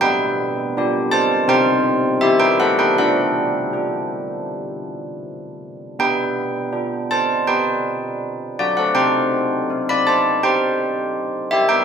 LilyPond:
\new Staff \with { instrumentName = "Church bells" } { \time 4/4 \key g \major \tempo 4 = 81 << { <b' g''>4. <c'' a''>8 <c'' g''>4 <g' e''>16 <b' g''>16 <a' fis''>16 <b' g''>16 | <a' fis''>2. r4 | <b' g''>4. <c'' a''>8 <b' g''>4. <fis' d''>16 <a' fis''>16 | <c'' g''>4~ <c'' g''>16 <d'' b''>16 <c'' a''>8 <c'' g''>4. <g' e''>16 <b' g''>16 | } \\ { b4 <d' g'>4 c'4 e'4 | d'4 d'2. | b4 d'2. | c'4 c'2. | } >> }